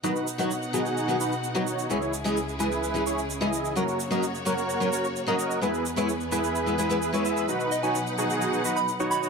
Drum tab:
SH |xxxxxxxxxxxxxxxx|xxxxxxxxxxxxxxxx|xxxxxxxxxxxxxxxx|xxxxxxxxxxxxxxxx|

SH |xxxxxxxxxxxxxxxx|